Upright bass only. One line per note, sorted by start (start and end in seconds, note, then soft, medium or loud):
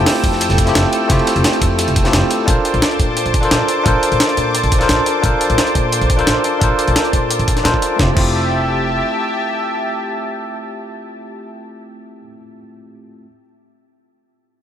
0.24 0.48 F2 medium
0.50 0.74 F1 medium
0.75 0.83 F1 medium
1.10 1.18 F1 medium
1.36 1.43 F1 medium
1.62 1.86 F2 medium
1.88 2.12 F1 medium
2.13 2.21 F1 medium
2.48 2.56 A#1 medium
2.74 2.81 A#1 medium
3.00 3.24 A#2 medium
3.26 3.50 A#1 medium
3.51 3.59 A#1 medium
3.86 3.94 A#1 medium
4.12 4.19 A#1 medium
4.38 4.62 A#2 medium
4.64 4.88 A#1 medium
4.89 4.97 A#1 medium
5.24 5.32 A#1 medium
5.50 5.57 A#1 medium
5.75 6.00 A#2 medium
6.01 6.26 A#1 medium
6.27 6.35 A#1 medium
6.62 6.70 A#1 medium
6.88 6.95 A#1 medium
7.13 7.38 A#2 medium
7.39 7.64 A#1 medium
7.65 7.73 A#1 loud
7.99 8.09 F1 medium
8.17 8.99 F1 medium